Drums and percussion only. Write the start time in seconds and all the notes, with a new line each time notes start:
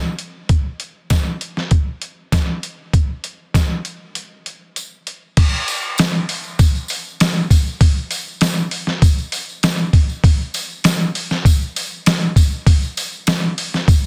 0.19 closed hi-hat
0.49 kick, closed hi-hat
0.80 closed hi-hat
1.10 kick, snare, closed hi-hat, tambourine
1.41 closed hi-hat
1.57 snare
1.71 kick, closed hi-hat
2.02 closed hi-hat
2.32 kick, snare, closed hi-hat, tambourine
2.63 closed hi-hat
2.93 kick, closed hi-hat
3.24 closed hi-hat
3.54 kick, snare, closed hi-hat, tambourine
3.85 closed hi-hat
4.15 closed hi-hat
4.46 closed hi-hat
4.76 closed hi-hat, tambourine
5.07 closed hi-hat
5.37 kick, open hi-hat, crash
5.68 open hi-hat, tambourine
5.83 tambourine
5.98 snare, open hi-hat, tambourine
6.29 open hi-hat, tambourine
6.44 tambourine
6.59 kick, open hi-hat, tambourine
6.75 tambourine
6.88 open hi-hat, tambourine
7.05 tambourine
7.20 snare, open hi-hat, tambourine
7.36 tambourine
7.50 kick, open hi-hat, tambourine
7.66 tambourine
7.81 kick, open hi-hat
8.11 open hi-hat, tambourine
8.28 tambourine
8.41 snare, open hi-hat, tambourine
8.71 open hi-hat, tambourine
8.87 snare
9.02 kick, open hi-hat, tambourine
9.18 tambourine
9.32 open hi-hat, tambourine
9.49 tambourine
9.63 snare, open hi-hat, tambourine
9.79 tambourine
9.93 kick, open hi-hat
10.09 tambourine
10.24 kick, open hi-hat
10.54 open hi-hat, tambourine
10.70 tambourine
10.84 snare, open hi-hat, tambourine
11.15 open hi-hat, tambourine
11.30 snare, tambourine
11.45 kick, open hi-hat, tambourine
11.61 tambourine
11.76 open hi-hat, tambourine
11.91 tambourine
12.06 snare, open hi-hat, tambourine
12.21 tambourine
12.36 kick, open hi-hat, tambourine
12.52 tambourine
12.66 kick, open hi-hat
12.82 tambourine
12.97 open hi-hat, tambourine
13.13 tambourine
13.27 snare, open hi-hat, tambourine
13.58 open hi-hat, tambourine
13.74 snare, tambourine
13.88 kick, open hi-hat, tambourine